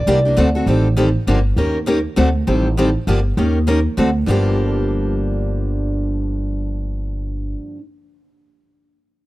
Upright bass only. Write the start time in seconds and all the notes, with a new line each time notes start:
0.07 C2
0.37 D2
0.66 A1
1.27 G1
1.56 D#2
2.17 D2
2.47 A1
3.07 G1
3.37 D#2
3.98 D2
4.27 G1